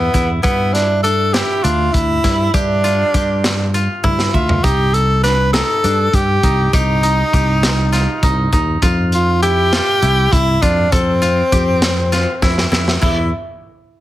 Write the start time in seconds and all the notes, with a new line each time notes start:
Already playing: B3 E4 G4
0.14 E2 E4, kick, closed hi-hat
0.43 G2 B3 E4, kick, closed hi-hat
0.73 D4, snare, closed hi-hat
1.03 D4 A4, closed hi-hat
1.33 E4 G4, snare, closed hi-hat
1.63 D2 D4 F4, closed hi-hat
1.93 D2 E4, kick, closed hi-hat
2.24 G2 E4, kick, snare, closed hi-hat
2.54 G2 D4 G4, kick, closed hi-hat
2.84 F4, closed hi-hat
3.14 G2 G4, kick, closed hi-hat
3.44 snare, closed hi-hat
3.74 F4, closed hi-hat
4.04 G2 E4, kick, high tom
4.19 snare
4.34 D2 F4 E5, kick
4.49 floor tom
4.64 C2 D#4 G4, kick, closed hi-hat
4.94 A4, closed hi-hat
5.23 D4 B4, snare, closed hi-hat
5.53 D#4 A4, snare, closed hi-hat
5.84 G2 D4, closed hi-hat
6.13 G2 G4, kick, closed hi-hat
6.43 C2 D#4, kick, closed hi-hat
6.73 C2 D#4 G4, kick, closed hi-hat
7.03 D#4, closed hi-hat
7.33 C2 G4, kick, closed hi-hat
7.63 snare, closed hi-hat
7.92 F4, snare, closed hi-hat
8.23 C2 D#4, kick, closed hi-hat
8.52 D#2 D#4, kick, closed hi-hat
8.82 F2 F4, kick, closed hi-hat
9.12 F4, closed hi-hat
9.42 E4 G4, closed hi-hat
9.73 F4, snare, closed hi-hat
10.02 C2 E4, closed hi-hat
10.32 C2 E4, kick, closed hi-hat
10.62 F2 D4 F4, kick, closed hi-hat
10.92 F2 C4 A4, kick, closed hi-hat
11.22 F4, closed hi-hat
11.52 F2 G4, kick, closed hi-hat
11.82 snare, closed hi-hat
12.12 F4, snare, closed hi-hat
12.42 F2 E4, kick, snare
12.58 snare
12.72 F2 E4, snare
12.88 snare
13.02 E2 E4, kick, crash